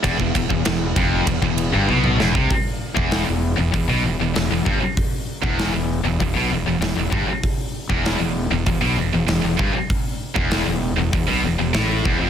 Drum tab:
RD |x-x-x-x-x-x-----|----------------|----------------|----------------|
HH |----------------|o---o---o---o---|o---o---o---o---|o---o---o---o---|
SD |----o---------o-|----o-------o---|----o-------o---|----o-------o---|
T1 |------------o---|----------------|----------------|----------------|
T2 |-------------o--|----------------|----------------|----------------|
BD |oooo--o-oo-----o|o--o----o-----o-|o--o----o-----o-|o--o----o-----o-|

RD |----------------|
HH |o---o---o---o---|
SD |----o-------o---|
T1 |----------------|
T2 |----------------|
BD |o--o----o-----o-|